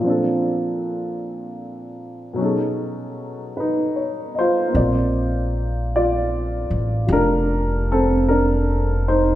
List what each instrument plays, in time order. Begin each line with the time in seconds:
Already playing: upright piano A#2
0.01 upright piano F3 C4
0.07 upright piano D4 A4
2.33 upright piano B2 F#3
2.38 upright piano C#4 D#4 G#4
2.44 upright piano A4
3.57 upright piano D#4 B4
3.96 upright piano C#5
4.35 upright piano C5 D#5
4.40 upright piano F4
4.68 upright piano A#3
4.72 upright bass A#1, upright piano C4 D5
4.79 upright piano F4
5.96 upright piano F4 D5
6.71 upright bass A1
7.06 upright bass F1, upright piano F4 G4
7.12 upright piano D4 A#4
7.92 upright piano C4 A4
8.29 upright piano D4 A#4
9.08 upright piano D#4 C5